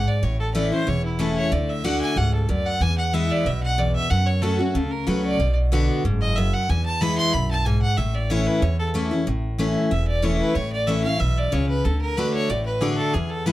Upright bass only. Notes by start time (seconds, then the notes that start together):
0.23 A1
0.87 E1
1.52 D2
2.16 C#2
2.49 D2
2.81 E2
3.45 B1
4.11 F#2
4.75 D2
5.07 C#2
5.39 B1
6.04 F#1
6.69 E2
7.34 B1
7.98 A1
8.62 E2
9.27 A1
9.91 E1
10.56 A1
11.20 B1
11.53 C#2
11.85 D2
12.50 A1
13.14 E2